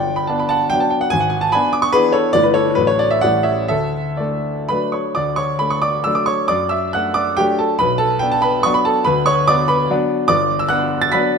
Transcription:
Already playing: G1 D5 G5
0.16 B5
0.27 B3 D4 A5
0.39 B5
0.49 F#5 A5
0.70 F#3 B3 D4 G5
0.80 A5
0.90 G5
1.01 F#5
1.10 G#1 G#5
1.20 F#5
1.30 G#5
1.41 A5
1.52 B3 D4 G#5 B5
1.73 D6
1.82 C#6
1.93 E3 B3 D4 G#4 B4
2.12 A4 C#5
2.33 G1 E3 A3 E4 D5
2.43 B4
2.54 A4 C#5
2.75 A1 F#3 A3 D4 B4
2.87 C#5
2.99 D5
3.11 E5
3.21 A1 G3 A3 C#4 D5 F#5
3.43 C#5 E5
3.68 D2 A4 E5
4.17 A3 D4 A4 D5
4.69 F#3 A3 D4 B4 B5
4.92 C#5 C#6
5.15 D2 D5 D6
5.36 C#5 C#6
5.59 A3 D4 B5
5.70 C#6
5.82 D5 D6
6.04 F#3 A3 D4 E6
6.15 D6
6.26 C#5 C#6
6.48 F#2 D5 D6
6.69 E5 E6
6.93 A3 D4 F#5 F#6
7.14 D5 D6
7.37 F#3 A3 D4 G4 G5
7.59 A4 A5
7.79 B1 B4 B5
7.98 A4 A5
8.19 B3 D4 G5
8.32 A5
8.42 B4 B5
8.63 F#3 B3 D4 C#6
8.74 B5
8.85 A4 A5
9.05 D2 B4 B5
9.26 C#5 C#6
9.48 B3 D4 D5 D6
9.68 B4 B5
9.90 F#3 B3 D4
10.28 G1 D5 D6
10.59 E6
10.69 B3 D4 F#5 F#6
11.02 A6
11.12 F#3 B3 D4 B5 B6

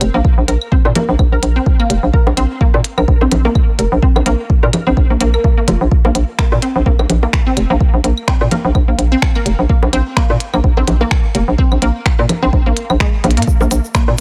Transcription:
0.01 F1, closed hi-hat, claves
0.14 A#1 A#3
0.25 kick
0.38 A#1
0.48 A#1 A#4, closed hi-hat
0.61 claves
0.72 C4, kick
0.85 A#2, low bongo
0.95 A#3, closed hi-hat, low conga
1.09 A#1
1.19 A#1, kick, claves
1.32 A#1 A#4
1.43 A#1, closed hi-hat
1.56 C4
1.66 kick
1.80 A#3, claves
1.90 F1, closed hi-hat
2.03 A#1
2.13 A#4, kick
2.27 A#1, low bongo
2.37 A#1 C4, closed hi-hat, claves
2.61 A#3, kick
2.74 A#2, low bongo
2.84 closed hi-hat
2.98 A#1 A#4, claves
3.08 A#1, kick
3.21 A#1 C4, low bongo
3.32 A#1, closed hi-hat, low conga
3.45 A#3, low bongo
3.55 kick, claves
3.79 F1 A#4, closed hi-hat
3.92 A#1
4.02 C4, kick
4.16 A#1, low bongo, claves
4.26 A#1 A#3, closed hi-hat
4.50 kick
4.63 A#2 A#4, low bongo
4.73 closed hi-hat, low conga, claves
4.87 A#1 C4
4.97 A#1, kick
5.10 A#1 A#3
5.21 A#1 A#3, closed hi-hat
5.34 A#4, claves
5.44 A#3, kick
5.57 A#3
5.68 F1 F4, closed hi-hat, low conga
5.81 A#1
5.91 kick
6.05 A#1 A#3, low bongo
6.15 A#1, closed hi-hat
6.39 A#3, finger snap, kick, claves
6.52 A#2, low bongo
6.62 C4, closed hi-hat
6.76 A#1
6.86 A#1 A#3, kick
6.99 A#1, low bongo, claves
7.09 A#1, closed hi-hat, low conga
7.23 A#3, low bongo
7.33 finger snap, kick
7.47 C4
7.57 F1, closed hi-hat, claves
7.70 A#1 A#3
7.80 kick
7.94 A#1
8.04 A#1 A#3, closed hi-hat
8.17 claves
8.28 C4, finger snap, kick
8.41 A#2, low bongo
8.51 A#3, closed hi-hat, low conga
8.65 A#1
8.75 A#1, kick, claves
8.88 A#1 A#3
8.98 A#1, closed hi-hat
9.12 C4
9.22 finger snap, kick
9.35 A#3, claves
9.46 F1, closed hi-hat
9.59 A#1
9.69 A#3, kick
9.83 A#1, low bongo
9.93 A#1 C4, closed hi-hat, claves
10.17 A#3, finger snap, kick
10.30 A#2, low bongo
10.40 closed hi-hat
10.54 A#1 A#3, claves
10.64 A#1, kick
10.77 A#1 C4, low bongo
10.87 A#1, closed hi-hat, low conga
11.01 A#3, low bongo
11.11 finger snap, kick, claves
11.35 F1 A#3, closed hi-hat
11.48 A#1
11.58 C4, kick
11.72 A#1, claves
11.82 A#1 A#3, closed hi-hat
12.06 finger snap, kick
12.19 A#2 A#3, low bongo
12.29 closed hi-hat, low conga, claves
12.43 A#1 C4
12.53 A#1, kick
12.66 A#1 A#3
12.77 closed hi-hat
12.90 A#1, claves
13.00 G#3, finger snap, kick
13.24 A#1 A#3, closed hi-hat, low conga
13.31 closed hi-hat
13.37 A#2 A#3, closed hi-hat
13.42 closed hi-hat
13.47 kick, shaker
13.61 A#1 A#3, low bongo, shaker
13.71 A#1, closed hi-hat, shaker
13.85 shaker
13.95 A#3, finger snap, kick, claves, shaker
14.08 A#2, low bongo

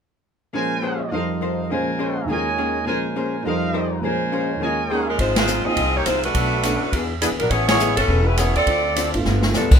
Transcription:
0.53 A#2 F3 G#3 A#3 C#4 G#4 A#4 C5 G#5
0.82 A#3 C#4 G#4 C5 C#5
0.99 D#5
1.11 F2 F3 G3 D#4 A#4 C5 D#5 F5
1.16 A#4
1.41 F3 D#4 A#4 C5
1.52 D#5
1.61 F5
1.70 A#2 F3 G#3 A#3 C#4 G#4 A#4 C5 G#5
1.99 A#3 C#4 G#4 C5 C#5 C#6
2.08 D#5 C6
2.15 F5
2.20 G#5 A#5
2.24 D#2 D#3
2.29 G#3 A#3 C#4 F4 G#4 A#4 C#5 D#5 G#5
2.35 C#5
2.58 D#3 A#3 C#4 G#4
2.85 A#2 F3 G#3 A#3 C#4 G#4 A#4 C5 G#5
2.89 C5
3.16 A#3 C#4 G#4 C5
3.42 F2 F3 G3 D#4 A#4 C5 D#5 F5
3.46 D#4 A#4 C5
3.73 F3 D#4 A#4 C5 G5
3.90 A#5
4.00 A#2 F3 G#3 A#3 C#4 A#4 C5 G#5
4.04 G#4 C5
4.32 A#3 C#4 G#4 C5 F5
4.42 D#5
4.51 C#5
4.55 D#2 D#3
4.61 D#3 G#3 A#3 C#4 F4 G#4 A#4 C#5 D#5 G#5
4.66 C#5
4.90 D#3 A#3 C#4 G#4 C6
4.98 A#5
5.05 C#4 D#4 G#5
5.09 G#3 A#4 D#5
5.19 G#1 G#2 F3 G#3 C4 D#4 F4 C5, kick, ride
5.36 G#3 D#4 F4 C5, snare, ride
5.47 G#2 F3 C4 D#4, hi-hat pedal
5.65 A#3 C4 D#4 F4 G#4 D#5, muted upright bass stroke
5.76 C2 G#2 F3 C4 D#4, kick, ride
5.95 A#3 D#4 G4 C#5
6.06 C2 G#2 F3 G#3 C4 D#4 F4 C5, cross-stick, hi-hat pedal, ride
6.23 A3 D4 F#4 B4, ride
6.34 B1 B2 F#3 A3, kick, ride
6.39 D4
6.63 B2 F#3 A3 C#4 D4 F#4, hi-hat pedal, ride
6.82 muted upright bass stroke
6.93 E2 E3 B3 D4 G#4, kick, ride
7.21 E3 B3 D4 G#4, cross-stick, hi-hat pedal, ride
7.31 D2
7.39 A#1 F#3 B3 D4 A#4, ride
7.50 A1 A3 B3 C#4 E4 G#4 B4 C#5, kick, ride
7.68 B3 E4 G#4 C#5, snare, ride
7.80 G#3 A3 B3 C#4 E4 G#4 B4, hi-hat pedal
7.97 G#1 E3 B3 C#4 A4, ride
8.08 E1 A3 C#4 G#4 B4, kick
8.26 G#3 C#4 E4 B4
8.37 A3 B3 C#4 E4 G#4 B4 C#5, cross-stick, hi-hat pedal, ride
8.55 D#2 C4 F4 A4 D5, ride
8.66 D2 D3 A3 C4 F4, kick, ride
8.96 D3 A3 C4 F4, hi-hat pedal, ride
9.14 G#1 A3 B3 D4 F4, ride
9.25 G1 G2 F3 B3 D4, snare
9.42 snare
9.53 C#2 G2 F3 B3 D4 A4, snare, hi-hat pedal
9.71 G3 D4 F4 B4, kick, crash

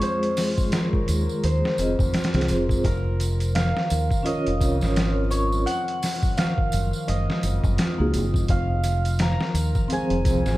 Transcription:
Already playing: F2 D#3 G#3 F4 G#4 D#5 F5
0.01 F3 C5, closed hi-hat, tambourine
0.23 closed hi-hat
0.37 F3, snare, open hi-hat, tambourine
0.58 kick, tambourine
0.72 D#3 A#4, snare, closed hi-hat, tambourine
0.93 kick
1.08 D#2 F3, closed hi-hat, tambourine
1.29 tambourine
1.43 D#2 G#3 C5, closed hi-hat, tambourine
1.65 snare
1.77 F1 F2 C4 F4 G#4 D#5, closed hi-hat, tambourine
1.98 F1 F3, kick, tambourine
2.13 F4, snare, closed hi-hat, tambourine
2.24 snare, closed hi-hat
2.34 C2 C4 F4 G#4 C5, snare, closed hi-hat
2.41 snare, closed hi-hat
2.48 F1, closed hi-hat, tambourine
2.69 G#3, kick, tambourine
2.84 F1 F3 A#4, kick, closed hi-hat, tambourine
3.20 F3, closed hi-hat, tambourine
3.40 closed hi-hat, tambourine
3.55 D#3 F5, snare, closed hi-hat, tambourine
3.77 snare
3.90 D#2 F3, closed hi-hat, tambourine
4.11 kick, tambourine
4.23 G#3 C#4 F4 A#4 D#5, closed hi-hat, tambourine
4.27 C#5
4.47 F1, closed hi-hat
4.60 C2 F2, kick, closed hi-hat, tambourine
4.81 G#1 F3, snare, tambourine
4.96 F4, snare, closed hi-hat, tambourine
5.30 C#5, closed hi-hat, tambourine
5.51 G#3, tambourine
5.66 F3 F#5, closed hi-hat, tambourine
5.88 closed hi-hat
6.02 F3, snare, open hi-hat, tambourine
6.23 kick, tambourine
6.37 D#3 F5, snare, closed hi-hat, tambourine
6.58 kick
6.72 F#1 F3, closed hi-hat, tambourine
6.93 tambourine
7.07 F#1 G#3 D#5, closed hi-hat, tambourine
7.30 snare
7.43 F#1 F2, closed hi-hat, tambourine
7.64 F#1 F3, kick, tambourine
7.78 F4, snare, closed hi-hat, tambourine
7.98 C#2 A#3 D#4 F#4 G#4
8.14 F#1, closed hi-hat, tambourine
8.34 G#3, kick, tambourine
8.48 F1 F3 F5, kick, closed hi-hat, tambourine
8.83 F3, closed hi-hat, tambourine
9.05 closed hi-hat, tambourine
9.19 D#3 A#5, snare, closed hi-hat, tambourine
9.41 snare
9.54 D#2 F3, closed hi-hat, tambourine
9.75 kick, tambourine
9.88 F3 G#3 C4 G#4, closed hi-hat, tambourine
9.93 C5 G#5
10.10 F1, closed hi-hat
10.25 C2 F2, kick, closed hi-hat, tambourine
10.46 G#1 F3, snare, tambourine

